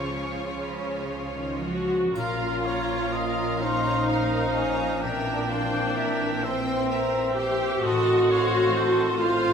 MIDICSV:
0, 0, Header, 1, 12, 480
1, 0, Start_track
1, 0, Tempo, 1077199
1, 963, Time_signature, 6, 3, 24, 8
1, 963, Tempo, 980392
1, 1443, Tempo, 943396
1, 2883, Tempo, 923077
1, 4734, End_track
2, 0, Start_track
2, 0, Title_t, "Violin section"
2, 0, Program_c, 0, 48
2, 0, Note_on_c, 0, 85, 42
2, 228, Note_off_c, 0, 85, 0
2, 957, Note_on_c, 0, 82, 34
2, 1184, Note_off_c, 0, 82, 0
2, 1202, Note_on_c, 0, 77, 31
2, 1440, Note_on_c, 0, 82, 31
2, 1442, Note_off_c, 0, 77, 0
2, 1684, Note_off_c, 0, 82, 0
2, 1687, Note_on_c, 0, 77, 34
2, 1926, Note_on_c, 0, 82, 30
2, 1928, Note_off_c, 0, 77, 0
2, 2149, Note_off_c, 0, 82, 0
2, 2169, Note_on_c, 0, 77, 27
2, 2406, Note_off_c, 0, 77, 0
2, 2409, Note_on_c, 0, 82, 33
2, 2629, Note_off_c, 0, 82, 0
2, 2648, Note_on_c, 0, 79, 36
2, 2885, Note_off_c, 0, 79, 0
2, 2886, Note_on_c, 0, 82, 30
2, 3125, Note_off_c, 0, 82, 0
2, 3131, Note_on_c, 0, 79, 36
2, 3369, Note_off_c, 0, 79, 0
2, 3374, Note_on_c, 0, 82, 33
2, 3597, Note_off_c, 0, 82, 0
2, 3618, Note_on_c, 0, 79, 31
2, 3851, Note_on_c, 0, 81, 40
2, 3854, Note_off_c, 0, 79, 0
2, 4071, Note_off_c, 0, 81, 0
2, 4093, Note_on_c, 0, 77, 36
2, 4330, Note_off_c, 0, 77, 0
2, 4332, Note_on_c, 0, 81, 36
2, 4567, Note_on_c, 0, 77, 40
2, 4568, Note_off_c, 0, 81, 0
2, 4734, Note_off_c, 0, 77, 0
2, 4734, End_track
3, 0, Start_track
3, 0, Title_t, "Flute"
3, 0, Program_c, 1, 73
3, 958, Note_on_c, 1, 77, 36
3, 1663, Note_off_c, 1, 77, 0
3, 1684, Note_on_c, 1, 84, 36
3, 1922, Note_on_c, 1, 82, 39
3, 1929, Note_off_c, 1, 84, 0
3, 2160, Note_on_c, 1, 80, 37
3, 2167, Note_off_c, 1, 82, 0
3, 2396, Note_on_c, 1, 79, 34
3, 2404, Note_off_c, 1, 80, 0
3, 2639, Note_on_c, 1, 77, 37
3, 2646, Note_off_c, 1, 79, 0
3, 2880, Note_on_c, 1, 76, 31
3, 2888, Note_off_c, 1, 77, 0
3, 3119, Note_on_c, 1, 79, 35
3, 3127, Note_off_c, 1, 76, 0
3, 3847, Note_off_c, 1, 79, 0
3, 3850, Note_on_c, 1, 84, 37
3, 4734, Note_off_c, 1, 84, 0
3, 4734, End_track
4, 0, Start_track
4, 0, Title_t, "Oboe"
4, 0, Program_c, 2, 68
4, 963, Note_on_c, 2, 77, 34
4, 1204, Note_on_c, 2, 73, 35
4, 1212, Note_off_c, 2, 77, 0
4, 1436, Note_on_c, 2, 75, 33
4, 1443, Note_off_c, 2, 73, 0
4, 1682, Note_on_c, 2, 77, 37
4, 1690, Note_off_c, 2, 75, 0
4, 2399, Note_off_c, 2, 77, 0
4, 2402, Note_on_c, 2, 79, 39
4, 3127, Note_on_c, 2, 76, 40
4, 3135, Note_off_c, 2, 79, 0
4, 3851, Note_off_c, 2, 76, 0
4, 3855, Note_on_c, 2, 75, 39
4, 4098, Note_on_c, 2, 73, 44
4, 4106, Note_off_c, 2, 75, 0
4, 4337, Note_on_c, 2, 72, 42
4, 4344, Note_off_c, 2, 73, 0
4, 4501, Note_off_c, 2, 72, 0
4, 4571, Note_on_c, 2, 72, 44
4, 4734, Note_off_c, 2, 72, 0
4, 4734, End_track
5, 0, Start_track
5, 0, Title_t, "Violin section"
5, 0, Program_c, 3, 48
5, 0, Note_on_c, 3, 65, 28
5, 0, Note_on_c, 3, 73, 29
5, 857, Note_off_c, 3, 65, 0
5, 857, Note_off_c, 3, 73, 0
5, 962, Note_on_c, 3, 70, 28
5, 963, Note_on_c, 3, 77, 28
5, 1187, Note_off_c, 3, 70, 0
5, 1188, Note_off_c, 3, 77, 0
5, 1203, Note_on_c, 3, 73, 25
5, 1207, Note_on_c, 3, 82, 28
5, 1442, Note_off_c, 3, 73, 0
5, 1444, Note_off_c, 3, 82, 0
5, 1444, Note_on_c, 3, 70, 28
5, 1444, Note_on_c, 3, 77, 29
5, 1687, Note_off_c, 3, 70, 0
5, 1687, Note_off_c, 3, 77, 0
5, 1687, Note_on_c, 3, 82, 36
5, 1688, Note_on_c, 3, 73, 34
5, 1926, Note_on_c, 3, 77, 26
5, 1928, Note_off_c, 3, 73, 0
5, 1928, Note_off_c, 3, 82, 0
5, 1928, Note_on_c, 3, 70, 29
5, 2149, Note_off_c, 3, 77, 0
5, 2150, Note_off_c, 3, 70, 0
5, 2166, Note_on_c, 3, 82, 27
5, 2169, Note_on_c, 3, 73, 30
5, 2404, Note_off_c, 3, 82, 0
5, 2405, Note_off_c, 3, 73, 0
5, 2408, Note_on_c, 3, 76, 34
5, 2410, Note_on_c, 3, 70, 35
5, 2629, Note_off_c, 3, 76, 0
5, 2630, Note_off_c, 3, 70, 0
5, 2645, Note_on_c, 3, 72, 33
5, 2646, Note_on_c, 3, 79, 31
5, 2883, Note_off_c, 3, 72, 0
5, 2884, Note_off_c, 3, 79, 0
5, 2887, Note_on_c, 3, 70, 33
5, 2887, Note_on_c, 3, 76, 33
5, 3126, Note_off_c, 3, 70, 0
5, 3126, Note_off_c, 3, 76, 0
5, 3126, Note_on_c, 3, 72, 36
5, 3131, Note_on_c, 3, 79, 41
5, 3363, Note_on_c, 3, 70, 32
5, 3364, Note_on_c, 3, 76, 31
5, 3367, Note_off_c, 3, 72, 0
5, 3369, Note_off_c, 3, 79, 0
5, 3591, Note_off_c, 3, 70, 0
5, 3591, Note_off_c, 3, 76, 0
5, 3610, Note_on_c, 3, 72, 30
5, 3613, Note_on_c, 3, 79, 32
5, 3849, Note_off_c, 3, 72, 0
5, 3851, Note_off_c, 3, 79, 0
5, 3856, Note_on_c, 3, 69, 37
5, 3856, Note_on_c, 3, 75, 39
5, 4074, Note_off_c, 3, 69, 0
5, 4074, Note_off_c, 3, 75, 0
5, 4099, Note_on_c, 3, 72, 38
5, 4102, Note_on_c, 3, 77, 36
5, 4333, Note_off_c, 3, 72, 0
5, 4334, Note_off_c, 3, 77, 0
5, 4336, Note_on_c, 3, 69, 37
5, 4337, Note_on_c, 3, 75, 32
5, 4570, Note_off_c, 3, 69, 0
5, 4570, Note_off_c, 3, 75, 0
5, 4571, Note_on_c, 3, 72, 46
5, 4571, Note_on_c, 3, 77, 41
5, 4734, Note_off_c, 3, 72, 0
5, 4734, Note_off_c, 3, 77, 0
5, 4734, End_track
6, 0, Start_track
6, 0, Title_t, "Clarinet"
6, 0, Program_c, 4, 71
6, 962, Note_on_c, 4, 73, 33
6, 1685, Note_on_c, 4, 72, 41
6, 1693, Note_off_c, 4, 73, 0
6, 2397, Note_off_c, 4, 72, 0
6, 2400, Note_on_c, 4, 70, 34
6, 3107, Note_off_c, 4, 70, 0
6, 3124, Note_on_c, 4, 72, 42
6, 3835, Note_off_c, 4, 72, 0
6, 3852, Note_on_c, 4, 69, 44
6, 4734, Note_off_c, 4, 69, 0
6, 4734, End_track
7, 0, Start_track
7, 0, Title_t, "Viola section"
7, 0, Program_c, 5, 48
7, 0, Note_on_c, 5, 53, 26
7, 0, Note_on_c, 5, 61, 29
7, 714, Note_off_c, 5, 53, 0
7, 714, Note_off_c, 5, 61, 0
7, 730, Note_on_c, 5, 66, 37
7, 946, Note_off_c, 5, 66, 0
7, 959, Note_on_c, 5, 65, 46
7, 1683, Note_on_c, 5, 63, 45
7, 1684, Note_off_c, 5, 65, 0
7, 2403, Note_off_c, 5, 63, 0
7, 2403, Note_on_c, 5, 62, 53
7, 3108, Note_off_c, 5, 62, 0
7, 3121, Note_on_c, 5, 60, 48
7, 3608, Note_off_c, 5, 60, 0
7, 3609, Note_on_c, 5, 67, 55
7, 3845, Note_on_c, 5, 66, 65
7, 3849, Note_off_c, 5, 67, 0
7, 4563, Note_off_c, 5, 66, 0
7, 4566, Note_on_c, 5, 65, 63
7, 4734, Note_off_c, 5, 65, 0
7, 4734, End_track
8, 0, Start_track
8, 0, Title_t, "Harp"
8, 0, Program_c, 6, 46
8, 0, Note_on_c, 6, 49, 27
8, 0, Note_on_c, 6, 56, 21
8, 0, Note_on_c, 6, 61, 20
8, 0, Note_on_c, 6, 65, 22
8, 3, Note_on_c, 6, 68, 18
8, 128, Note_on_c, 6, 73, 22
8, 246, Note_on_c, 6, 77, 21
8, 361, Note_off_c, 6, 68, 0
8, 367, Note_on_c, 6, 68, 22
8, 477, Note_off_c, 6, 61, 0
8, 482, Note_on_c, 6, 61, 21
8, 601, Note_off_c, 6, 56, 0
8, 606, Note_on_c, 6, 56, 20
8, 727, Note_off_c, 6, 61, 0
8, 732, Note_on_c, 6, 61, 16
8, 842, Note_off_c, 6, 56, 0
8, 847, Note_on_c, 6, 56, 18
8, 965, Note_on_c, 6, 46, 35
8, 981, Note_off_c, 6, 56, 0
8, 982, Note_off_c, 6, 68, 0
8, 984, Note_off_c, 6, 49, 0
8, 1207, Note_on_c, 6, 58, 29
8, 1441, Note_off_c, 6, 61, 0
8, 1447, Note_on_c, 6, 61, 25
8, 1682, Note_off_c, 6, 65, 0
8, 1688, Note_on_c, 6, 65, 30
8, 1933, Note_on_c, 6, 70, 31
8, 1975, Note_off_c, 6, 73, 0
8, 2110, Note_off_c, 6, 77, 0
8, 2164, Note_off_c, 6, 61, 0
8, 2170, Note_on_c, 6, 61, 26
8, 2401, Note_off_c, 6, 46, 0
8, 2407, Note_on_c, 6, 46, 37
8, 2425, Note_off_c, 6, 61, 0
8, 2425, Note_off_c, 6, 65, 0
8, 2644, Note_on_c, 6, 60, 28
8, 2879, Note_on_c, 6, 64, 27
8, 3120, Note_on_c, 6, 72, 34
8, 3189, Note_off_c, 6, 58, 0
8, 3358, Note_off_c, 6, 64, 0
8, 3364, Note_on_c, 6, 64, 35
8, 3602, Note_off_c, 6, 60, 0
8, 3608, Note_on_c, 6, 60, 29
8, 3856, Note_on_c, 6, 45, 37
8, 3868, Note_off_c, 6, 64, 0
8, 3869, Note_off_c, 6, 46, 0
8, 3871, Note_off_c, 6, 70, 0
8, 4091, Note_on_c, 6, 63, 32
8, 4331, Note_on_c, 6, 65, 29
8, 4563, Note_off_c, 6, 72, 0
8, 4569, Note_on_c, 6, 72, 38
8, 4734, Note_off_c, 6, 45, 0
8, 4734, Note_off_c, 6, 60, 0
8, 4734, Note_off_c, 6, 63, 0
8, 4734, Note_off_c, 6, 65, 0
8, 4734, Note_off_c, 6, 72, 0
8, 4734, End_track
9, 0, Start_track
9, 0, Title_t, "French horn section"
9, 0, Program_c, 7, 60
9, 956, Note_on_c, 7, 61, 34
9, 959, Note_on_c, 7, 53, 33
9, 2380, Note_off_c, 7, 61, 0
9, 2382, Note_off_c, 7, 53, 0
9, 2406, Note_on_c, 7, 52, 38
9, 2409, Note_on_c, 7, 60, 32
9, 3829, Note_off_c, 7, 52, 0
9, 3851, Note_on_c, 7, 51, 40
9, 4734, Note_off_c, 7, 51, 0
9, 4734, Note_off_c, 7, 60, 0
9, 4734, End_track
10, 0, Start_track
10, 0, Title_t, "Cello section"
10, 0, Program_c, 8, 48
10, 0, Note_on_c, 8, 49, 27
10, 184, Note_off_c, 8, 49, 0
10, 248, Note_on_c, 8, 49, 28
10, 592, Note_off_c, 8, 49, 0
10, 610, Note_on_c, 8, 51, 30
10, 729, Note_on_c, 8, 53, 30
10, 732, Note_off_c, 8, 51, 0
10, 961, Note_on_c, 8, 46, 32
10, 962, Note_off_c, 8, 53, 0
10, 3827, Note_off_c, 8, 46, 0
10, 3851, Note_on_c, 8, 45, 42
10, 4734, Note_off_c, 8, 45, 0
10, 4734, End_track
11, 0, Start_track
11, 0, Title_t, "Double bass section"
11, 0, Program_c, 10, 48
11, 0, Note_on_c, 10, 37, 27
11, 854, Note_off_c, 10, 37, 0
11, 954, Note_on_c, 10, 34, 35
11, 3823, Note_off_c, 10, 34, 0
11, 3851, Note_on_c, 10, 33, 45
11, 4734, Note_off_c, 10, 33, 0
11, 4734, End_track
12, 0, Start_track
12, 0, Title_t, "Drums"
12, 961, Note_on_c, 9, 81, 21
12, 1010, Note_off_c, 9, 81, 0
12, 4734, End_track
0, 0, End_of_file